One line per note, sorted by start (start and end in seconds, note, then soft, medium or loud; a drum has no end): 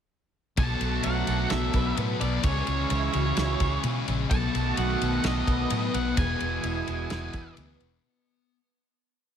0.57 0.74 B1 medium
0.57 2.44 B2 medium
0.57 1.03 B2 medium
0.57 2.45 F#3 medium
0.57 1.05 F#3 medium
0.57 2.45 A3 medium
0.57 1.06 B3 loud
0.57 2.45 D4 medium
0.57 2.46 F#4 medium
0.57 1.04 A4 medium
0.57 1.04 A5 loud
0.57 kick loud
0.57 ride loud
0.81 0.98 B1 medium
0.81 ride medium
1.03 1.22 B1 medium
1.03 1.49 B2 medium
1.03 1.30 F#3 medium
1.03 1.26 B3 medium
1.03 1.28 F#4 medium
1.03 1.48 F#5 medium
1.03 ride medium
1.27 1.45 B1 medium
1.27 1.51 F#3 soft
1.27 1.53 B3 medium
1.27 1.74 A4 medium
1.27 ride medium
1.50 1.68 B1 medium
1.50 1.95 B2 medium
1.50 1.97 F#3 medium
1.50 1.98 B3 medium
1.50 1.94 E5 medium
1.50 snare loud
1.50 ride medium
1.73 1.91 B1 medium
1.73 1.97 B4 medium
1.73 kick medium
1.73 ride medium
1.97 2.14 A2 medium
1.97 2.43 B2 medium
1.97 2.23 F#3 medium
1.97 2.19 B3 medium
1.97 2.45 B4 medium
1.97 ride medium
2.21 2.38 B1 medium
2.21 2.45 F#3 medium
2.21 2.43 B3 medium
2.21 2.44 D5 loud
2.21 ride medium
2.43 2.61 C#2 medium
2.43 2.89 C#3 medium
2.43 4.29 C#3 medium
2.43 4.31 E3 medium
2.43 2.90 G#3 loud
2.43 4.32 G#3 medium
2.43 2.92 C#4 loud
2.43 4.32 C#4 medium
2.43 2.91 G#4 medium
2.43 3.80 C#5 medium
2.43 kick loud
2.43 ride loud
2.48 4.33 E4 medium
2.67 2.85 C#2 medium
2.67 ride medium
2.90 3.08 C#2 medium
2.90 3.36 C#3 medium
2.90 3.16 G#3 medium
2.90 3.12 C#4 medium
2.90 3.15 E4 medium
2.90 ride medium
3.13 3.31 C#2 medium
3.13 3.38 G#3 medium
3.13 3.40 C#4 medium
3.13 3.61 F#4 medium
3.13 ride medium
3.37 3.54 C#2 medium
3.37 3.83 C#3 medium
3.37 3.84 G#3 medium
3.37 snare loud
3.37 ride medium
3.41 3.86 C#4 medium
3.60 3.77 C#2 medium
3.60 3.84 G#4 medium
3.60 kick medium
3.60 ride medium
3.84 4.01 B2 medium
3.84 4.29 C#3 medium
3.84 4.10 G#3 medium
3.84 4.07 C#4 medium
3.84 4.31 G#4 medium
3.84 ride medium
4.08 4.25 A#1 medium
4.08 4.31 G#3 medium
4.08 4.30 C#4 medium
4.08 ride medium
4.30 4.47 B1 medium
4.30 6.17 B2 medium
4.30 4.75 B2 medium
4.30 6.18 D#3 medium
4.30 4.77 F#3 loud
4.30 6.18 A3 medium
4.30 6.20 B3 medium
4.30 6.19 F#4 medium
4.30 4.78 A4 medium
4.30 4.78 A5 loud
4.30 kick loud
4.30 ride medium
4.34 4.80 B3 medium
4.55 4.71 B1 medium
4.55 ride medium
4.77 4.95 B1 medium
4.77 5.22 B2 medium
4.77 5.03 F#3 medium
4.77 5.00 B3 medium
4.77 5.02 F#4 medium
4.77 5.26 F#5 medium
4.77 ride medium
5.01 5.18 B1 medium
5.01 5.24 F#3 medium
5.01 5.26 B3 medium
5.01 5.48 A4 medium
5.01 ride medium
5.23 5.41 B1 medium
5.23 5.69 B2 medium
5.23 5.71 F#3 medium
5.23 5.73 B3 medium
5.23 5.97 D#5 medium
5.23 snare loud
5.23 ride medium
5.47 5.64 B1 medium
5.47 5.72 B4 medium
5.47 kick medium
5.47 ride medium
5.70 5.88 A2 medium
5.70 6.16 B2 medium
5.70 5.95 F#3 medium
5.70 5.93 B3 medium
5.70 7.34 B4 medium
5.70 ride medium
5.93 6.11 B1 medium
5.93 6.18 F#3 medium
5.93 8.55 B3 medium
5.93 6.18 F#5 medium
5.93 ride medium
6.17 6.34 E1 loud
6.17 6.62 E2 loud
6.17 6.64 B2 loud
6.17 8.05 E3 medium
6.17 6.65 E3 loud
6.17 8.06 G#3 medium
6.17 8.06 B3 medium
6.17 8.06 E4 medium
6.17 6.65 G#4 medium
6.17 7.54 G#5 medium
6.17 kick loud
6.17 ride loud
6.40 6.58 E1 medium
6.40 ride medium
6.63 6.81 E1 medium
6.63 7.08 E2 medium
6.63 6.88 B2 medium
6.63 6.85 E3 medium
6.63 6.88 E4 medium
6.63 ride medium
6.86 7.05 E1 medium
6.86 7.10 B2 medium
6.86 7.11 E3 medium
6.86 7.34 G#4 medium
6.86 ride medium
7.09 7.28 E1 medium
7.09 7.55 E2 medium
7.09 7.57 B2 medium
7.09 7.59 E3 medium
7.09 snare loud
7.09 ride medium
7.33 7.51 E1 medium
7.33 7.57 B4 medium
7.33 kick medium
7.33 ride medium
7.56 7.75 D2 medium
7.56 8.03 E2 medium
7.56 7.83 B2 medium
7.56 7.79 E3 medium
7.56 8.05 B4 medium
7.56 ride medium
7.80 7.98 E1 medium
7.80 8.05 B2 medium
7.80 8.03 E3 medium
7.80 ride medium